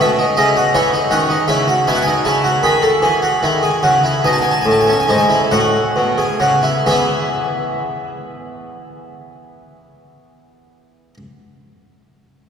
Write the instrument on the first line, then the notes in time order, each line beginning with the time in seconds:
harpsichord
Already playing: C#4
0.00 B2 E5
0.19 D#4
0.37 C#3 E4 D#5
0.56 F#4
0.74 E3 E4 C#5
0.94 D#4
1.11 D#3 C#4 F#5
1.30 D#4
1.48 C#3 E4 E5
1.68 F#4
1.87 B2 E4 G#5
1.95 F#5
2.03 G#5
2.07 D#4
2.25 C#3 E4 A5
2.44 F#4
2.63 D#3 G#4 B5
2.82 A4
3.02 E3 G#4
3.22 F#4
3.43 D#3 E4
3.63 G#4
3.83 C#3 F#4
4.04 E4
4.25 B2 D#4 G#5
4.33 A5
4.42 G#5
4.51 A5
4.61 G#5
4.66 A2
4.71 A5
4.81 G#5
4.87 C#4 A5
5.00 G#5
5.09 G#2 D#4 A5
5.18 G#5
5.29 E4
5.51 A2 F#4 F#5
5.96 B2
6.18 G#4
6.40 C#3 F#4
6.63 E4
6.86 E3 B3 E4 G#4 E5